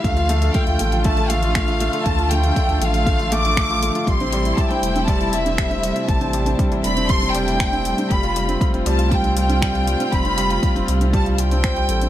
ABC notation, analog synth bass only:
X:1
M:4/4
L:1/16
Q:1/4=119
K:Am
V:1 name="Analog synth bass" clef=bass
D,,4 z D,, A,,,8- A,,, z | D,,4 z D,, A,,,8- A,,, z | A,,,4 z2 E,,,8- E,,, z | A,,,4 z A,,, E,,,8- E,,, z |
F,,,4 z F,,, C,,8- C,, z | F,,,4 z F,,, C,,8 A,,,2 |]